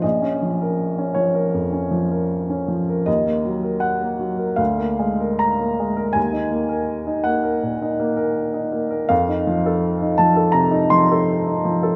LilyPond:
<<
  \new Staff \with { instrumentName = "Grand piano" } { \time 4/4 \key bes \minor \tempo 4 = 80 ees''4. des''2 r8 | ees''4 ges''4 f''4 bes''4 | aes''4. ges''2 r8 | f''4. a''8 bes''8 c'''4. | }
  \new Staff \with { instrumentName = "Grand piano" } { \time 4/4 \key bes \minor bes,,16 des'16 f16 bes'8 des'16 f16 bes'16 f,16 des'16 f16 bes'8 des'16 f16 bes'16 | ees,16 bes16 ges16 bes'8 bes16 ges16 bes'16 d,16 bes16 aes16 bes'8 bes16 aes16 bes'16 | ees,16 ees'16 bes16 bes'8 ees'16 bes16 bes'16 bes,16 ees'16 bes16 bes'8 ees'16 bes16 bes'16 | f,16 ees'16 f16 a'8 ees'16 f16 a'16 c16 ees'16 f16 a'8 ees'16 f16 a'16 | }
>>